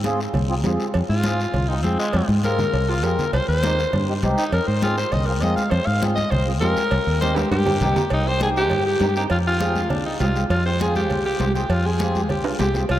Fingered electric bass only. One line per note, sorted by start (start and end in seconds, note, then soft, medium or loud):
0.00 0.26 G#2 medium
0.35 0.65 C2 loud
0.65 0.77 F2 medium
0.95 1.01 F2 loud
1.09 1.45 G#2 loud
1.54 1.84 C2 loud
1.84 1.96 F2 medium
2.14 2.20 F2 loud
2.28 2.64 G#2 loud
2.73 3.04 C2 loud
3.04 3.16 F2 medium
3.33 3.39 C2 loud
3.48 3.84 D#2 medium
3.93 4.24 G2 loud
4.23 4.35 C2 medium
4.52 4.59 F2 loud
4.68 5.04 G#2 medium
5.13 5.42 C2 loud
5.42 5.54 F2 medium
5.72 5.78 F2 loud
5.87 6.23 G#2 loud
6.32 6.61 C2 loud
6.61 6.73 F2 loud
6.92 6.98 C2 loud
7.07 7.43 D#2 medium
7.51 7.82 G2 loud
7.81 7.93 C2 loud
8.11 8.71 C2 loud
8.71 8.95 G2 loud
9.01 9.25 G2 medium
9.30 9.90 F2 loud
9.90 10.14 C2 loud
10.20 10.44 C2 medium
10.50 11.10 F2 loud
11.10 11.34 C2 loud
11.40 11.64 C2 medium
11.69 12.29 F2 loud
12.29 12.54 C2 loud
12.60 12.84 C2 medium
12.90 12.99 C2 loud